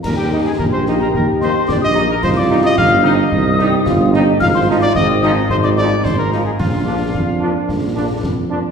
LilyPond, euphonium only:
\new Staff \with { instrumentName = "Euphonium" } { \time 2/4 \key ees \major \tempo 4 = 110 g'2~ | g'2 | f'2 | ees'8 g'8 f'8 ees'8 |
f'4 c'4 | ees'4. r8 | d'2~ | d'4. r8 | }